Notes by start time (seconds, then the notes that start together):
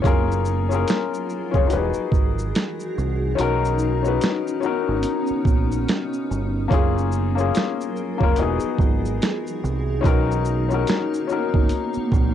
0.02 F#1 F#3 C#4 F4 G#4 A#4, kick, closed hi-hat, shaker
0.07 A#4
0.32 shaker
0.45 shaker
0.69 C#4 F4 G#4, shaker
0.75 A#4
0.88 finger snap, snare, closed hi-hat, shaker
1.14 shaker
1.29 shaker
1.51 F1 C#4 F4 G#4, kick, shaker
1.56 C#5
1.67 D#4 F#4 G4, closed hi-hat, shaker
1.71 E1 E3 D#4 F#4 G#4 B4
1.77 G#4
1.94 shaker
2.12 G#1, kick, shaker
2.39 shaker
2.55 finger snap, snare, closed hi-hat, shaker
2.80 shaker
2.98 C2, shaker
3.35 B1 B3 C#4 D#4 F#4, closed hi-hat, shaker
3.41 A#4
3.65 shaker
3.79 shaker
4.02 C#4 D#4 F#4, shaker
4.08 B4
4.21 finger snap, snare, closed hi-hat, shaker
4.47 shaker
4.60 C#4 D#4 F#4, shaker
4.66 A#4
4.89 G#1
5.03 closed hi-hat, shaker
5.27 muted fingered electric bass stroke, shaker
5.45 A#1, kick, shaker
5.72 shaker
5.88 finger snap, snare, closed hi-hat, shaker
6.13 shaker
6.31 G1, shaker
6.68 F#1 F#3 A#3 C#4 F4 G#4 A#4, kick, closed hi-hat, shaker
6.74 G#4
6.98 shaker
7.12 shaker
7.35 A#3 C#4 F4, shaker
7.40 G#4
7.55 finger snap, snare, closed hi-hat, shaker
7.81 shaker
7.96 shaker
8.18 F1 A#3 C#4 F4, kick
8.23 A#4
8.36 E1 E3 B3 D#4 F#4, closed hi-hat, shaker
8.42 G#4
8.60 shaker
8.78 G#1, kick, shaker
9.05 shaker
9.22 finger snap, snare, closed hi-hat, shaker
9.47 shaker
9.64 C2, shaker
10.01 A#3 B3 C#4 D#4 F#4, kick
10.05 B1 A#4, closed hi-hat, shaker
10.31 shaker
10.45 shaker
10.69 C#4 D#4 F#4, shaker
10.74 A#4
10.87 finger snap, snare, closed hi-hat, shaker
11.14 shaker
11.27 C#4 D#4 F#4, shaker
11.32 A#4
11.54 G#1, kick
11.69 closed hi-hat, shaker
11.93 muted fingered electric bass stroke, shaker
12.12 A#1, kick, shaker